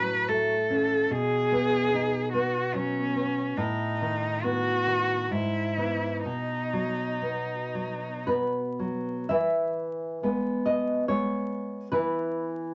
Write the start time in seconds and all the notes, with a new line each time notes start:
Already playing: A2 F#3 C#4 B4
0.29 A3 A4
0.70 C#4
1.10 B2 G#4
1.52 B3
1.94 D#4
2.33 B3 F#4
2.74 F#3 C#4
3.15 B3
3.57 A2 D#4
4.01 D#3
4.43 B3 F#4
4.86 D#3
5.31 G#2 E4
5.77 E3 B3
6.25 B2 D#4
6.73 F#3
7.22 B3
7.75 F#3
8.27 B3 B4
8.79 F#3
9.29 E3 E5
10.23 G#3 B3
10.66 D#5
11.08 G#3 B3 C#5
11.92 E3 B4